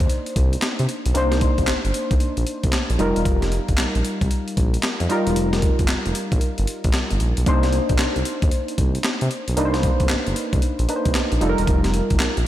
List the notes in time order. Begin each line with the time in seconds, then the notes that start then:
Already playing: A#3 D4 D#4 C5
0.00 D#2, kick, closed hi-hat
0.10 closed hi-hat
0.26 closed hi-hat
0.36 C2, kick, closed hi-hat
0.53 closed hi-hat
0.62 snare, clap, closed hi-hat
0.79 C3, closed hi-hat
0.89 closed hi-hat
1.06 B1, closed hi-hat
1.14 C2 A#3 D4 D#4 C5, closed hi-hat
1.32 snare, closed hi-hat
1.41 kick, closed hi-hat
1.58 C2, kick, closed hi-hat
1.67 G1, snare, clap, closed hi-hat
1.85 G1, closed hi-hat
1.94 closed hi-hat
2.11 C2, kick, closed hi-hat
2.20 closed hi-hat
2.37 A#1, closed hi-hat
2.47 closed hi-hat
2.63 C2, kick, closed hi-hat
2.72 snare, clap, closed hi-hat
2.90 A#1, closed hi-hat
2.99 F1 G3 D#4 F4 A#4, closed hi-hat
3.16 E1, closed hi-hat
3.25 F1, kick, closed hi-hat
3.42 snare, closed hi-hat
3.52 closed hi-hat
3.69 G1, kick, closed hi-hat
3.77 A#1, snare, clap, closed hi-hat
3.95 A#1, closed hi-hat
4.05 closed hi-hat
4.21 C2, kick, closed hi-hat
4.31 closed hi-hat
4.48 closed hi-hat
4.57 A#1, kick, closed hi-hat
4.74 closed hi-hat
4.83 snare, clap, closed hi-hat
5.00 F2, closed hi-hat
5.09 G3 D#4 F4 A#4, closed hi-hat
5.27 E1, closed hi-hat
5.36 F1, closed hi-hat
5.53 snare, closed hi-hat
5.62 kick, closed hi-hat
5.79 G1, kick, closed hi-hat
5.88 F1, snare, clap, closed hi-hat
6.06 F1, closed hi-hat
6.15 closed hi-hat
6.32 A#1, kick, closed hi-hat
6.41 closed hi-hat
6.58 G1, closed hi-hat
6.67 closed hi-hat
6.84 A#1, kick, closed hi-hat
6.93 snare, clap, closed hi-hat
7.10 G1, closed hi-hat
7.20 A#1, closed hi-hat
7.37 B1, closed hi-hat
7.46 C2 A#3 D4 D#4 C5, kick, closed hi-hat
7.63 snare, closed hi-hat
7.72 closed hi-hat
7.89 A#1, kick, closed hi-hat
7.98 C2, snare, clap, closed hi-hat
8.16 C2, closed hi-hat
8.25 closed hi-hat
8.42 D#2, kick, closed hi-hat
8.51 closed hi-hat
8.68 closed hi-hat
8.78 C2, kick, closed hi-hat
8.95 closed hi-hat
9.04 snare, clap, closed hi-hat
9.21 C3, closed hi-hat
9.31 closed hi-hat
9.48 B1, closed hi-hat
9.57 C2 A#3 D4 D#4 B4, closed hi-hat
9.65 C5
9.74 snare, closed hi-hat
9.83 kick, closed hi-hat
10.00 C2, kick, closed hi-hat
10.09 G1, snare, clap, closed hi-hat
10.27 G1, closed hi-hat
10.36 closed hi-hat
10.53 C2, kick, closed hi-hat
10.62 closed hi-hat
10.79 A#1, closed hi-hat
10.89 A#3 D4 D#4 B4, closed hi-hat
10.96 C5
11.05 C2, kick, closed hi-hat
11.14 snare, clap, closed hi-hat
11.32 A#1, closed hi-hat
11.41 F1 G3 D#4 F4 A4, closed hi-hat
11.49 A#4
11.58 E1, closed hi-hat
11.67 F1, kick, closed hi-hat
11.84 snare, closed hi-hat
11.94 closed hi-hat
12.10 G1, kick, closed hi-hat
12.19 A#1, snare, clap, closed hi-hat
12.37 A#1, closed hi-hat